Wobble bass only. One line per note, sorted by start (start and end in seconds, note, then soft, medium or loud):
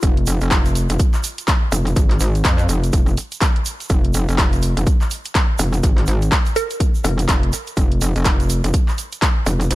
0.03 0.39 F1 medium
0.41 0.87 F1 medium
0.90 0.98 F1 loud
1.72 1.95 F1 loud
1.96 2.19 G#1 loud
2.20 2.43 G#1 loud
2.45 2.67 F2 loud
2.69 2.91 F1 loud
2.93 3.16 F1 loud
3.90 4.26 F1 loud
4.28 4.75 F1 loud
4.77 4.85 F1 loud
5.59 5.82 F1 loud
5.83 6.06 G#1 loud
6.08 6.30 G#1 loud
7.04 7.27 F1 loud
7.29 7.51 F1 loud
7.77 8.13 F1 loud
8.16 8.62 F1 loud
8.64 8.72 F1 loud
9.46 9.69 F1 loud
9.71 9.75 G#1 loud